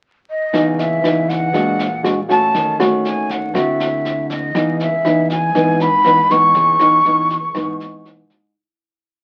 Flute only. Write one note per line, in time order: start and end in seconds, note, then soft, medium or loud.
0.30 0.81 D#5 medium
0.79 1.31 E5 medium
1.29 2.04 F#5 medium
2.31 2.77 A5 loud
3.06 3.33 G#5 medium
3.31 3.55 F#5 medium
3.56 4.27 E5 medium
4.31 4.77 D#5 medium
4.82 5.28 E5 medium
5.32 5.83 G#5 medium
5.82 6.33 B5 loud
6.31 8.06 C#6 loud